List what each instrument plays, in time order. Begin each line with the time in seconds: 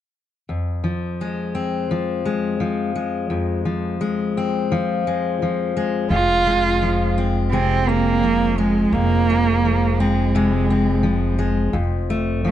0.49 steel-string acoustic guitar F2
0.84 steel-string acoustic guitar F3
1.21 steel-string acoustic guitar G#3
1.55 steel-string acoustic guitar C4
1.91 steel-string acoustic guitar F3
2.25 steel-string acoustic guitar G#3
2.60 steel-string acoustic guitar F3
2.95 steel-string acoustic guitar G#3
3.30 steel-string acoustic guitar F2
3.65 steel-string acoustic guitar F3
4.01 steel-string acoustic guitar G#3
4.37 steel-string acoustic guitar C4
4.72 steel-string acoustic guitar F3
5.07 steel-string acoustic guitar G#3
5.42 steel-string acoustic guitar F3
5.77 steel-string acoustic guitar G#3
6.10 upright bass F1, steel-string acoustic guitar F2, cello F4
6.47 steel-string acoustic guitar G#3
6.82 steel-string acoustic guitar F3
7.18 steel-string acoustic guitar C4
7.52 steel-string acoustic guitar C3 G#3, cello C4
7.87 cello A#3, steel-string acoustic guitar C4
8.23 steel-string acoustic guitar F3
8.57 cello G#3, steel-string acoustic guitar G#3
8.93 upright bass F1, steel-string acoustic guitar F2, cello A#3
9.30 steel-string acoustic guitar G#3
9.65 steel-string acoustic guitar F3
9.99 cello G#3, steel-string acoustic guitar C4
10.35 steel-string acoustic guitar C3 G#3
10.70 steel-string acoustic guitar C4
11.03 steel-string acoustic guitar F3
11.39 steel-string acoustic guitar G#3
11.73 upright bass F1, steel-string acoustic guitar F2
12.10 steel-string acoustic guitar A3
12.45 steel-string acoustic guitar F3, cello A3